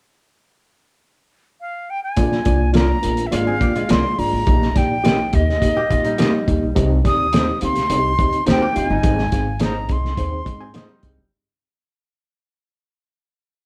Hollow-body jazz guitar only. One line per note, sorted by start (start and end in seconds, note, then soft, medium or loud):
3.33 3.47 G#3 medium
3.33 3.46 F4 medium
3.47 3.61 C4 medium
3.47 3.60 G#4 medium
3.61 3.75 A#3 medium
3.61 3.75 G4 medium
3.76 4.44 G#3 medium
3.76 4.44 F4 medium
5.77 5.90 A#3 medium
5.77 5.90 G4 medium
5.91 6.04 F4 medium
6.04 6.73 G3 medium
6.04 6.72 D#4 medium
8.62 8.76 A#3 medium
8.62 8.75 G4 medium
8.76 8.89 F4 medium
8.90 9.18 G3 medium
8.90 9.17 D#4 medium
10.61 10.75 C4 medium
10.61 10.74 G#4 medium
10.74 10.88 G#3 medium
10.74 10.88 F4 medium
10.89 11.30 G3 medium
10.89 11.30 D#4 medium